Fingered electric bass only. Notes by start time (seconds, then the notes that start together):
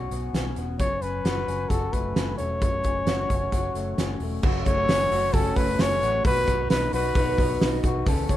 0.11 B1
0.33 B1
0.56 E1
0.79 F#1
1.01 F#1
1.24 F#1
1.48 F#1
1.70 F#1
1.93 F#1
2.16 F#1
2.40 E1
2.62 F#1
2.84 F#1
3.06 F#1
3.30 F#1
3.52 F#1
3.74 F#1
3.98 F#1
4.20 E1
4.43 F#1
4.66 F#1
4.89 F#1
5.11 F#1
5.33 F#1
5.56 F#1
5.79 F#1
6.01 A1
6.24 B1
6.47 B1
6.71 B1
6.93 B1
7.15 B1
7.38 B1
7.62 B1
7.84 B1
8.06 C#2
8.29 C#2